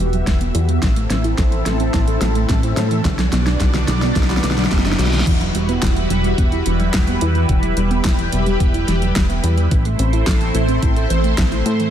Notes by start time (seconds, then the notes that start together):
Already playing: B3 F#4 G4 E5, riser
0.00 E1 E3
0.13 F#3, closed hi-hat
0.27 E1 G3, kick, snare, closed hi-hat
0.41 B3, closed hi-hat
0.55 E2 E4, closed hi-hat
0.69 E3, closed hi-hat
0.82 A1 E3 C4 E4 A4, kick, snare, closed hi-hat
0.96 A3, closed hi-hat
1.10 A1 C4, snare, closed hi-hat
1.24 E4, closed hi-hat
1.38 A1 A4, kick, snare, closed hi-hat
1.52 E3, closed hi-hat
1.66 A1 A3, snare, closed hi-hat
1.80 C4, closed hi-hat
1.94 A1 E4, kick, snare, closed hi-hat
2.08 A4, closed hi-hat
2.21 A1 E3, snare, closed hi-hat
2.35 A3, closed hi-hat
2.49 A1 C4, kick, snare, closed hi-hat
2.63 E4, closed hi-hat
2.77 A2 A4, snare, closed hi-hat
2.91 E3, closed hi-hat
3.05 B1 D3 B3 D4 F#4 D5, kick, snare, closed hi-hat
3.19 F#3, snare, closed hi-hat
3.32 B1 B3, snare, closed hi-hat
3.46 D4, snare, closed hi-hat
3.60 B1 F#4, kick, snare, closed hi-hat
3.74 D3, snare, closed hi-hat
3.88 B1 F#3, snare, closed hi-hat
4.02 B3, snare, closed hi-hat
4.16 B1 D4, kick, snare, closed hi-hat, reverse cymbal
4.23 snare
4.30 F#4, snare, closed hi-hat
4.37 snare
4.44 B1 D3, snare, closed hi-hat
4.51 snare
4.58 F#3, snare, closed hi-hat
4.64 snare
4.71 F#1 B3, kick, snare, closed hi-hat
4.78 snare
4.85 D4, snare, closed hi-hat
4.92 snare
4.99 B1 F#4, snare, closed hi-hat
5.06 snare
5.13 D3, snare, closed hi-hat
5.20 snare
5.27 E1 E3 G3 E4 F#4 B4, kick, closed hi-hat, crash
5.41 F#3, closed hi-hat
5.55 E1 G3, closed hi-hat
5.69 B3, closed hi-hat
5.83 E1 E4, kick, snare, clap, closed hi-hat
5.96 E3, closed hi-hat
6.10 E1 F#3, closed hi-hat
6.24 G3, closed hi-hat
6.38 E1 B3, kick, closed hi-hat
6.52 E4, closed hi-hat
6.66 E1 E3, closed hi-hat
6.80 F#3, closed hi-hat
6.94 E1 G3, kick, snare, clap, closed hi-hat
7.07 B3, closed hi-hat
7.21 E2 E4, closed hi-hat
7.35 E3, closed hi-hat
7.49 E1 E3 G4, kick, closed hi-hat
7.63 F#3, closed hi-hat
7.77 E1 G3, closed hi-hat
7.91 B3, closed hi-hat
8.05 E1 E4, kick, snare, clap, closed hi-hat
8.18 E3, closed hi-hat
8.32 E1 F#3, closed hi-hat
8.46 G3, closed hi-hat
8.60 E1 B3, kick, closed hi-hat
8.74 E4, closed hi-hat
8.88 E1 E3, snare, closed hi-hat
9.02 F#3, closed hi-hat
9.16 E1 G3, kick, snare, clap, closed hi-hat
9.30 B3, closed hi-hat
9.44 E2 E4, closed hi-hat
9.57 E3, closed hi-hat
9.71 A1 E3 A3 C4 E4 C5, kick, closed hi-hat
9.85 A3, closed hi-hat
9.99 A1 C4, closed hi-hat
10.13 E4, closed hi-hat
10.27 A1 A4, kick, snare, clap, closed hi-hat
10.41 E3, closed hi-hat
10.55 A1 A3, closed hi-hat
10.68 C4, closed hi-hat
10.82 A1 E4, kick, closed hi-hat
10.96 A4, closed hi-hat
11.10 A1 E3, closed hi-hat
11.24 A3, closed hi-hat
11.38 A1 C4, kick, snare, clap, closed hi-hat
11.52 E4, closed hi-hat
11.66 A2 A4, closed hi-hat
11.80 E3, closed hi-hat